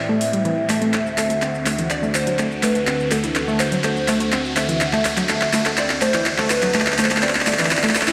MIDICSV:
0, 0, Header, 1, 8, 480
1, 0, Start_track
1, 0, Tempo, 483871
1, 928, Time_signature, 4, 2, 24, 8
1, 8058, End_track
2, 0, Start_track
2, 0, Title_t, "Digital synth lead"
2, 0, Program_c, 0, 84
2, 0, Note_on_c, 0, 76, 113
2, 648, Note_off_c, 0, 76, 0
2, 688, Note_on_c, 0, 76, 116
2, 1848, Note_off_c, 0, 76, 0
2, 1888, Note_on_c, 0, 74, 101
2, 2128, Note_on_c, 0, 72, 101
2, 2142, Note_off_c, 0, 74, 0
2, 2607, Note_on_c, 0, 71, 102
2, 2622, Note_off_c, 0, 72, 0
2, 3088, Note_on_c, 0, 69, 92
2, 3103, Note_off_c, 0, 71, 0
2, 3562, Note_off_c, 0, 69, 0
2, 3568, Note_on_c, 0, 72, 94
2, 3791, Note_off_c, 0, 72, 0
2, 3808, Note_on_c, 0, 72, 104
2, 4527, Note_on_c, 0, 76, 120
2, 4542, Note_off_c, 0, 72, 0
2, 5727, Note_on_c, 0, 74, 102
2, 5742, Note_off_c, 0, 76, 0
2, 5961, Note_off_c, 0, 74, 0
2, 5967, Note_on_c, 0, 72, 102
2, 6448, Note_on_c, 0, 71, 101
2, 6463, Note_off_c, 0, 72, 0
2, 6928, Note_on_c, 0, 72, 88
2, 6942, Note_off_c, 0, 71, 0
2, 7168, Note_on_c, 0, 74, 91
2, 7183, Note_off_c, 0, 72, 0
2, 8058, Note_off_c, 0, 74, 0
2, 8058, End_track
3, 0, Start_track
3, 0, Title_t, "Synth bell"
3, 0, Program_c, 1, 98
3, 0, Note_on_c, 1, 76, 105
3, 648, Note_off_c, 1, 76, 0
3, 688, Note_on_c, 1, 76, 101
3, 1848, Note_off_c, 1, 76, 0
3, 1888, Note_on_c, 1, 74, 100
3, 2111, Note_off_c, 1, 74, 0
3, 2128, Note_on_c, 1, 72, 102
3, 2574, Note_off_c, 1, 72, 0
3, 2608, Note_on_c, 1, 71, 90
3, 3054, Note_off_c, 1, 71, 0
3, 3089, Note_on_c, 1, 69, 91
3, 3534, Note_off_c, 1, 69, 0
3, 3568, Note_on_c, 1, 72, 91
3, 3791, Note_off_c, 1, 72, 0
3, 3807, Note_on_c, 1, 72, 96
3, 4488, Note_off_c, 1, 72, 0
3, 4528, Note_on_c, 1, 76, 103
3, 5688, Note_off_c, 1, 76, 0
3, 5727, Note_on_c, 1, 74, 101
3, 5951, Note_off_c, 1, 74, 0
3, 5967, Note_on_c, 1, 72, 99
3, 6414, Note_off_c, 1, 72, 0
3, 6447, Note_on_c, 1, 71, 95
3, 6894, Note_off_c, 1, 71, 0
3, 6927, Note_on_c, 1, 72, 87
3, 7150, Note_off_c, 1, 72, 0
3, 7167, Note_on_c, 1, 74, 86
3, 8058, Note_off_c, 1, 74, 0
3, 8058, End_track
4, 0, Start_track
4, 0, Title_t, "Synth pluck"
4, 0, Program_c, 2, 84
4, 90, Note_on_c, 2, 57, 102
4, 152, Note_off_c, 2, 57, 0
4, 331, Note_on_c, 2, 55, 75
4, 372, Note_off_c, 2, 55, 0
4, 447, Note_on_c, 2, 52, 106
4, 513, Note_off_c, 2, 52, 0
4, 688, Note_on_c, 2, 57, 104
4, 753, Note_off_c, 2, 57, 0
4, 810, Note_on_c, 2, 57, 98
4, 835, Note_off_c, 2, 57, 0
4, 928, Note_on_c, 2, 57, 82
4, 971, Note_off_c, 2, 57, 0
4, 1168, Note_on_c, 2, 57, 100
4, 1211, Note_off_c, 2, 57, 0
4, 1290, Note_on_c, 2, 57, 79
4, 1315, Note_off_c, 2, 57, 0
4, 1408, Note_on_c, 2, 60, 81
4, 1434, Note_off_c, 2, 60, 0
4, 1648, Note_on_c, 2, 57, 76
4, 1674, Note_off_c, 2, 57, 0
4, 1771, Note_on_c, 2, 52, 81
4, 1833, Note_off_c, 2, 52, 0
4, 2010, Note_on_c, 2, 57, 97
4, 2073, Note_off_c, 2, 57, 0
4, 2251, Note_on_c, 2, 54, 79
4, 2292, Note_off_c, 2, 54, 0
4, 2368, Note_on_c, 2, 57, 83
4, 2411, Note_off_c, 2, 57, 0
4, 2608, Note_on_c, 2, 57, 104
4, 2651, Note_off_c, 2, 57, 0
4, 2731, Note_on_c, 2, 57, 77
4, 2755, Note_off_c, 2, 57, 0
4, 2848, Note_on_c, 2, 60, 83
4, 2874, Note_off_c, 2, 60, 0
4, 3088, Note_on_c, 2, 57, 76
4, 3114, Note_off_c, 2, 57, 0
4, 3211, Note_on_c, 2, 52, 81
4, 3273, Note_off_c, 2, 52, 0
4, 3450, Note_on_c, 2, 57, 106
4, 3513, Note_off_c, 2, 57, 0
4, 3691, Note_on_c, 2, 54, 81
4, 3732, Note_off_c, 2, 54, 0
4, 3808, Note_on_c, 2, 57, 81
4, 3851, Note_off_c, 2, 57, 0
4, 4048, Note_on_c, 2, 57, 106
4, 4091, Note_off_c, 2, 57, 0
4, 4170, Note_on_c, 2, 57, 76
4, 4195, Note_off_c, 2, 57, 0
4, 4287, Note_on_c, 2, 60, 85
4, 4314, Note_off_c, 2, 60, 0
4, 4527, Note_on_c, 2, 57, 79
4, 4553, Note_off_c, 2, 57, 0
4, 4650, Note_on_c, 2, 52, 75
4, 4712, Note_off_c, 2, 52, 0
4, 4890, Note_on_c, 2, 57, 99
4, 4952, Note_off_c, 2, 57, 0
4, 5130, Note_on_c, 2, 54, 81
4, 5171, Note_off_c, 2, 54, 0
4, 5247, Note_on_c, 2, 57, 81
4, 5291, Note_off_c, 2, 57, 0
4, 5487, Note_on_c, 2, 57, 97
4, 5531, Note_off_c, 2, 57, 0
4, 5610, Note_on_c, 2, 57, 81
4, 5635, Note_off_c, 2, 57, 0
4, 5727, Note_on_c, 2, 60, 82
4, 5753, Note_off_c, 2, 60, 0
4, 5967, Note_on_c, 2, 57, 78
4, 5994, Note_off_c, 2, 57, 0
4, 6090, Note_on_c, 2, 52, 78
4, 6152, Note_off_c, 2, 52, 0
4, 6330, Note_on_c, 2, 57, 100
4, 6393, Note_off_c, 2, 57, 0
4, 6570, Note_on_c, 2, 54, 78
4, 6612, Note_off_c, 2, 54, 0
4, 6687, Note_on_c, 2, 57, 83
4, 6731, Note_off_c, 2, 57, 0
4, 6927, Note_on_c, 2, 57, 102
4, 6971, Note_off_c, 2, 57, 0
4, 7050, Note_on_c, 2, 57, 82
4, 7075, Note_off_c, 2, 57, 0
4, 7167, Note_on_c, 2, 60, 79
4, 7193, Note_off_c, 2, 60, 0
4, 7407, Note_on_c, 2, 57, 78
4, 7433, Note_off_c, 2, 57, 0
4, 7530, Note_on_c, 2, 52, 79
4, 7592, Note_off_c, 2, 52, 0
4, 7770, Note_on_c, 2, 57, 98
4, 7832, Note_off_c, 2, 57, 0
4, 8010, Note_on_c, 2, 64, 107
4, 8058, Note_off_c, 2, 64, 0
4, 8058, End_track
5, 0, Start_track
5, 0, Title_t, "Analog synth pad"
5, 0, Program_c, 3, 89
5, 0, Note_on_c, 3, 45, 81
5, 0, Note_on_c, 3, 52, 75
5, 0, Note_on_c, 3, 60, 74
5, 0, Note_on_c, 3, 67, 90
5, 887, Note_off_c, 3, 45, 0
5, 887, Note_off_c, 3, 67, 0
5, 888, Note_off_c, 3, 52, 0
5, 927, Note_on_c, 3, 38, 84
5, 927, Note_on_c, 3, 66, 92
5, 928, Note_on_c, 3, 50, 74
5, 8058, Note_off_c, 3, 38, 0
5, 8058, Note_off_c, 3, 50, 0
5, 8058, Note_off_c, 3, 60, 0
5, 8058, Note_off_c, 3, 66, 0
5, 8058, End_track
6, 0, Start_track
6, 0, Title_t, "Reverse cymbal"
6, 0, Program_c, 4, 119
6, 7647, Note_on_c, 4, 60, 78
6, 8058, Note_off_c, 4, 60, 0
6, 8058, End_track
7, 0, Start_track
7, 0, Title_t, "Riser"
7, 0, Program_c, 5, 103
7, 0, Note_on_c, 5, 60, 76
7, 8058, Note_off_c, 5, 60, 0
7, 8058, End_track
8, 0, Start_track
8, 0, Title_t, "Drums"
8, 208, Note_on_c, 9, 46, 107
8, 307, Note_off_c, 9, 46, 0
8, 331, Note_on_c, 9, 42, 64
8, 430, Note_off_c, 9, 42, 0
8, 448, Note_on_c, 9, 42, 46
8, 547, Note_off_c, 9, 42, 0
8, 688, Note_on_c, 9, 39, 73
8, 688, Note_on_c, 9, 46, 117
8, 787, Note_off_c, 9, 39, 0
8, 787, Note_off_c, 9, 46, 0
8, 811, Note_on_c, 9, 42, 61
8, 910, Note_off_c, 9, 42, 0
8, 928, Note_on_c, 9, 39, 75
8, 928, Note_on_c, 9, 42, 50
8, 933, Note_on_c, 9, 82, 45
8, 1027, Note_off_c, 9, 39, 0
8, 1027, Note_off_c, 9, 42, 0
8, 1032, Note_off_c, 9, 82, 0
8, 1056, Note_on_c, 9, 82, 23
8, 1155, Note_off_c, 9, 82, 0
8, 1168, Note_on_c, 9, 39, 77
8, 1168, Note_on_c, 9, 46, 106
8, 1173, Note_on_c, 9, 82, 80
8, 1267, Note_off_c, 9, 39, 0
8, 1267, Note_off_c, 9, 46, 0
8, 1272, Note_off_c, 9, 82, 0
8, 1290, Note_on_c, 9, 42, 64
8, 1296, Note_on_c, 9, 82, 34
8, 1390, Note_off_c, 9, 42, 0
8, 1395, Note_off_c, 9, 82, 0
8, 1408, Note_on_c, 9, 39, 73
8, 1408, Note_on_c, 9, 42, 49
8, 1413, Note_on_c, 9, 82, 41
8, 1507, Note_off_c, 9, 39, 0
8, 1507, Note_off_c, 9, 42, 0
8, 1512, Note_off_c, 9, 82, 0
8, 1536, Note_on_c, 9, 82, 24
8, 1635, Note_off_c, 9, 82, 0
8, 1648, Note_on_c, 9, 39, 76
8, 1648, Note_on_c, 9, 46, 105
8, 1653, Note_on_c, 9, 82, 75
8, 1747, Note_off_c, 9, 39, 0
8, 1747, Note_off_c, 9, 46, 0
8, 1752, Note_off_c, 9, 82, 0
8, 1771, Note_on_c, 9, 42, 62
8, 1776, Note_on_c, 9, 82, 33
8, 1870, Note_off_c, 9, 42, 0
8, 1875, Note_off_c, 9, 82, 0
8, 1888, Note_on_c, 9, 39, 79
8, 1888, Note_on_c, 9, 42, 52
8, 1893, Note_on_c, 9, 82, 45
8, 1987, Note_off_c, 9, 39, 0
8, 1987, Note_off_c, 9, 42, 0
8, 1992, Note_off_c, 9, 82, 0
8, 2016, Note_on_c, 9, 82, 23
8, 2115, Note_off_c, 9, 82, 0
8, 2128, Note_on_c, 9, 39, 76
8, 2128, Note_on_c, 9, 46, 105
8, 2133, Note_on_c, 9, 82, 78
8, 2227, Note_off_c, 9, 39, 0
8, 2227, Note_off_c, 9, 46, 0
8, 2232, Note_off_c, 9, 82, 0
8, 2251, Note_on_c, 9, 42, 64
8, 2256, Note_on_c, 9, 82, 33
8, 2350, Note_off_c, 9, 42, 0
8, 2356, Note_off_c, 9, 82, 0
8, 2368, Note_on_c, 9, 39, 78
8, 2368, Note_on_c, 9, 42, 51
8, 2373, Note_on_c, 9, 82, 41
8, 2467, Note_off_c, 9, 39, 0
8, 2467, Note_off_c, 9, 42, 0
8, 2472, Note_off_c, 9, 82, 0
8, 2496, Note_on_c, 9, 82, 22
8, 2595, Note_off_c, 9, 82, 0
8, 2608, Note_on_c, 9, 39, 80
8, 2608, Note_on_c, 9, 46, 112
8, 2613, Note_on_c, 9, 82, 82
8, 2707, Note_off_c, 9, 39, 0
8, 2707, Note_off_c, 9, 46, 0
8, 2712, Note_off_c, 9, 82, 0
8, 2731, Note_on_c, 9, 42, 62
8, 2736, Note_on_c, 9, 82, 33
8, 2830, Note_off_c, 9, 42, 0
8, 2835, Note_off_c, 9, 82, 0
8, 2847, Note_on_c, 9, 39, 83
8, 2847, Note_on_c, 9, 42, 53
8, 2853, Note_on_c, 9, 82, 47
8, 2947, Note_off_c, 9, 39, 0
8, 2947, Note_off_c, 9, 42, 0
8, 2952, Note_off_c, 9, 82, 0
8, 2976, Note_on_c, 9, 82, 24
8, 3075, Note_off_c, 9, 82, 0
8, 3087, Note_on_c, 9, 39, 86
8, 3087, Note_on_c, 9, 46, 106
8, 3093, Note_on_c, 9, 82, 79
8, 3187, Note_off_c, 9, 39, 0
8, 3187, Note_off_c, 9, 46, 0
8, 3192, Note_off_c, 9, 82, 0
8, 3210, Note_on_c, 9, 42, 66
8, 3216, Note_on_c, 9, 82, 36
8, 3310, Note_off_c, 9, 42, 0
8, 3315, Note_off_c, 9, 82, 0
8, 3327, Note_on_c, 9, 39, 82
8, 3327, Note_on_c, 9, 42, 50
8, 3332, Note_on_c, 9, 82, 43
8, 3426, Note_off_c, 9, 39, 0
8, 3426, Note_off_c, 9, 42, 0
8, 3432, Note_off_c, 9, 82, 0
8, 3455, Note_on_c, 9, 82, 24
8, 3554, Note_off_c, 9, 82, 0
8, 3567, Note_on_c, 9, 39, 85
8, 3567, Note_on_c, 9, 46, 99
8, 3573, Note_on_c, 9, 82, 84
8, 3666, Note_off_c, 9, 39, 0
8, 3666, Note_off_c, 9, 46, 0
8, 3672, Note_off_c, 9, 82, 0
8, 3690, Note_on_c, 9, 42, 66
8, 3696, Note_on_c, 9, 82, 34
8, 3789, Note_off_c, 9, 42, 0
8, 3795, Note_off_c, 9, 82, 0
8, 3807, Note_on_c, 9, 39, 87
8, 3807, Note_on_c, 9, 42, 53
8, 3812, Note_on_c, 9, 82, 46
8, 3906, Note_off_c, 9, 39, 0
8, 3906, Note_off_c, 9, 42, 0
8, 3911, Note_off_c, 9, 82, 0
8, 3935, Note_on_c, 9, 82, 23
8, 4035, Note_off_c, 9, 82, 0
8, 4047, Note_on_c, 9, 39, 87
8, 4047, Note_on_c, 9, 46, 98
8, 4053, Note_on_c, 9, 82, 83
8, 4146, Note_off_c, 9, 39, 0
8, 4146, Note_off_c, 9, 46, 0
8, 4152, Note_off_c, 9, 82, 0
8, 4170, Note_on_c, 9, 42, 66
8, 4175, Note_on_c, 9, 82, 35
8, 4269, Note_off_c, 9, 42, 0
8, 4275, Note_off_c, 9, 82, 0
8, 4287, Note_on_c, 9, 39, 84
8, 4287, Note_on_c, 9, 42, 52
8, 4293, Note_on_c, 9, 82, 46
8, 4387, Note_off_c, 9, 39, 0
8, 4387, Note_off_c, 9, 42, 0
8, 4392, Note_off_c, 9, 82, 0
8, 4416, Note_on_c, 9, 82, 24
8, 4515, Note_off_c, 9, 82, 0
8, 4527, Note_on_c, 9, 39, 94
8, 4527, Note_on_c, 9, 46, 105
8, 4533, Note_on_c, 9, 82, 82
8, 4627, Note_off_c, 9, 39, 0
8, 4627, Note_off_c, 9, 46, 0
8, 4632, Note_off_c, 9, 82, 0
8, 4651, Note_on_c, 9, 42, 64
8, 4656, Note_on_c, 9, 82, 34
8, 4750, Note_off_c, 9, 42, 0
8, 4755, Note_off_c, 9, 82, 0
8, 4767, Note_on_c, 9, 39, 92
8, 4767, Note_on_c, 9, 42, 56
8, 4773, Note_on_c, 9, 82, 47
8, 4866, Note_off_c, 9, 39, 0
8, 4866, Note_off_c, 9, 42, 0
8, 4872, Note_off_c, 9, 82, 0
8, 4890, Note_on_c, 9, 39, 80
8, 4895, Note_on_c, 9, 82, 24
8, 4989, Note_off_c, 9, 39, 0
8, 4995, Note_off_c, 9, 82, 0
8, 5007, Note_on_c, 9, 39, 92
8, 5007, Note_on_c, 9, 46, 104
8, 5013, Note_on_c, 9, 82, 82
8, 5106, Note_off_c, 9, 39, 0
8, 5106, Note_off_c, 9, 46, 0
8, 5112, Note_off_c, 9, 82, 0
8, 5130, Note_on_c, 9, 39, 83
8, 5130, Note_on_c, 9, 42, 71
8, 5135, Note_on_c, 9, 82, 36
8, 5229, Note_off_c, 9, 39, 0
8, 5229, Note_off_c, 9, 42, 0
8, 5235, Note_off_c, 9, 82, 0
8, 5247, Note_on_c, 9, 39, 91
8, 5247, Note_on_c, 9, 42, 50
8, 5253, Note_on_c, 9, 82, 45
8, 5346, Note_off_c, 9, 39, 0
8, 5346, Note_off_c, 9, 42, 0
8, 5352, Note_off_c, 9, 82, 0
8, 5370, Note_on_c, 9, 39, 86
8, 5375, Note_on_c, 9, 82, 24
8, 5469, Note_off_c, 9, 39, 0
8, 5474, Note_off_c, 9, 82, 0
8, 5487, Note_on_c, 9, 39, 97
8, 5487, Note_on_c, 9, 46, 100
8, 5492, Note_on_c, 9, 82, 81
8, 5586, Note_off_c, 9, 39, 0
8, 5586, Note_off_c, 9, 46, 0
8, 5592, Note_off_c, 9, 82, 0
8, 5610, Note_on_c, 9, 39, 87
8, 5610, Note_on_c, 9, 42, 66
8, 5615, Note_on_c, 9, 82, 35
8, 5709, Note_off_c, 9, 39, 0
8, 5709, Note_off_c, 9, 42, 0
8, 5715, Note_off_c, 9, 82, 0
8, 5727, Note_on_c, 9, 39, 96
8, 5727, Note_on_c, 9, 42, 56
8, 5732, Note_on_c, 9, 82, 48
8, 5826, Note_off_c, 9, 39, 0
8, 5826, Note_off_c, 9, 42, 0
8, 5832, Note_off_c, 9, 82, 0
8, 5850, Note_on_c, 9, 39, 83
8, 5855, Note_on_c, 9, 82, 24
8, 5949, Note_off_c, 9, 39, 0
8, 5954, Note_off_c, 9, 82, 0
8, 5967, Note_on_c, 9, 39, 94
8, 5967, Note_on_c, 9, 46, 104
8, 5972, Note_on_c, 9, 82, 82
8, 6066, Note_off_c, 9, 39, 0
8, 6066, Note_off_c, 9, 46, 0
8, 6071, Note_off_c, 9, 82, 0
8, 6089, Note_on_c, 9, 39, 88
8, 6089, Note_on_c, 9, 42, 69
8, 6095, Note_on_c, 9, 82, 37
8, 6189, Note_off_c, 9, 39, 0
8, 6189, Note_off_c, 9, 42, 0
8, 6194, Note_off_c, 9, 82, 0
8, 6207, Note_on_c, 9, 39, 95
8, 6207, Note_on_c, 9, 42, 52
8, 6212, Note_on_c, 9, 82, 47
8, 6306, Note_off_c, 9, 39, 0
8, 6306, Note_off_c, 9, 42, 0
8, 6311, Note_off_c, 9, 82, 0
8, 6329, Note_on_c, 9, 39, 90
8, 6335, Note_on_c, 9, 82, 24
8, 6429, Note_off_c, 9, 39, 0
8, 6434, Note_off_c, 9, 82, 0
8, 6447, Note_on_c, 9, 39, 106
8, 6447, Note_on_c, 9, 46, 108
8, 6452, Note_on_c, 9, 82, 89
8, 6546, Note_off_c, 9, 39, 0
8, 6546, Note_off_c, 9, 46, 0
8, 6551, Note_off_c, 9, 82, 0
8, 6570, Note_on_c, 9, 39, 89
8, 6570, Note_on_c, 9, 42, 67
8, 6575, Note_on_c, 9, 82, 35
8, 6669, Note_off_c, 9, 39, 0
8, 6669, Note_off_c, 9, 42, 0
8, 6674, Note_off_c, 9, 82, 0
8, 6687, Note_on_c, 9, 39, 104
8, 6687, Note_on_c, 9, 42, 55
8, 6692, Note_on_c, 9, 82, 46
8, 6748, Note_off_c, 9, 39, 0
8, 6748, Note_on_c, 9, 39, 92
8, 6786, Note_off_c, 9, 42, 0
8, 6792, Note_off_c, 9, 82, 0
8, 6809, Note_off_c, 9, 39, 0
8, 6809, Note_on_c, 9, 39, 94
8, 6815, Note_on_c, 9, 82, 24
8, 6868, Note_off_c, 9, 39, 0
8, 6868, Note_on_c, 9, 39, 93
8, 6914, Note_off_c, 9, 82, 0
8, 6927, Note_off_c, 9, 39, 0
8, 6927, Note_on_c, 9, 39, 103
8, 6927, Note_on_c, 9, 46, 100
8, 6932, Note_on_c, 9, 82, 86
8, 6988, Note_off_c, 9, 39, 0
8, 6988, Note_on_c, 9, 39, 88
8, 7026, Note_off_c, 9, 46, 0
8, 7031, Note_off_c, 9, 82, 0
8, 7050, Note_off_c, 9, 39, 0
8, 7050, Note_on_c, 9, 39, 90
8, 7050, Note_on_c, 9, 42, 73
8, 7055, Note_on_c, 9, 82, 36
8, 7108, Note_off_c, 9, 39, 0
8, 7108, Note_on_c, 9, 39, 94
8, 7149, Note_off_c, 9, 42, 0
8, 7154, Note_off_c, 9, 82, 0
8, 7167, Note_off_c, 9, 39, 0
8, 7167, Note_on_c, 9, 39, 101
8, 7167, Note_on_c, 9, 42, 54
8, 7173, Note_on_c, 9, 82, 44
8, 7228, Note_off_c, 9, 39, 0
8, 7228, Note_on_c, 9, 39, 85
8, 7266, Note_off_c, 9, 42, 0
8, 7272, Note_off_c, 9, 82, 0
8, 7290, Note_off_c, 9, 39, 0
8, 7290, Note_on_c, 9, 39, 92
8, 7295, Note_on_c, 9, 82, 24
8, 7348, Note_off_c, 9, 39, 0
8, 7348, Note_on_c, 9, 39, 93
8, 7394, Note_off_c, 9, 82, 0
8, 7406, Note_off_c, 9, 39, 0
8, 7406, Note_on_c, 9, 39, 105
8, 7406, Note_on_c, 9, 46, 101
8, 7412, Note_on_c, 9, 82, 84
8, 7468, Note_off_c, 9, 39, 0
8, 7468, Note_on_c, 9, 39, 92
8, 7506, Note_off_c, 9, 46, 0
8, 7511, Note_off_c, 9, 82, 0
8, 7529, Note_off_c, 9, 39, 0
8, 7529, Note_on_c, 9, 39, 94
8, 7529, Note_on_c, 9, 42, 69
8, 7535, Note_on_c, 9, 82, 35
8, 7588, Note_off_c, 9, 39, 0
8, 7588, Note_on_c, 9, 39, 95
8, 7629, Note_off_c, 9, 42, 0
8, 7634, Note_off_c, 9, 82, 0
8, 7647, Note_off_c, 9, 39, 0
8, 7647, Note_on_c, 9, 39, 110
8, 7647, Note_on_c, 9, 42, 57
8, 7652, Note_on_c, 9, 82, 48
8, 7708, Note_off_c, 9, 39, 0
8, 7708, Note_on_c, 9, 39, 98
8, 7746, Note_off_c, 9, 42, 0
8, 7751, Note_off_c, 9, 82, 0
8, 7770, Note_off_c, 9, 39, 0
8, 7770, Note_on_c, 9, 39, 94
8, 7775, Note_on_c, 9, 82, 24
8, 7829, Note_off_c, 9, 39, 0
8, 7829, Note_on_c, 9, 39, 99
8, 7875, Note_off_c, 9, 82, 0
8, 7887, Note_off_c, 9, 39, 0
8, 7887, Note_on_c, 9, 39, 107
8, 7887, Note_on_c, 9, 46, 101
8, 7893, Note_on_c, 9, 82, 80
8, 7949, Note_off_c, 9, 39, 0
8, 7949, Note_on_c, 9, 39, 95
8, 7986, Note_off_c, 9, 46, 0
8, 7992, Note_off_c, 9, 82, 0
8, 8010, Note_off_c, 9, 39, 0
8, 8010, Note_on_c, 9, 39, 98
8, 8010, Note_on_c, 9, 42, 73
8, 8016, Note_on_c, 9, 82, 36
8, 8058, Note_off_c, 9, 39, 0
8, 8058, Note_off_c, 9, 42, 0
8, 8058, Note_off_c, 9, 82, 0
8, 8058, End_track
0, 0, End_of_file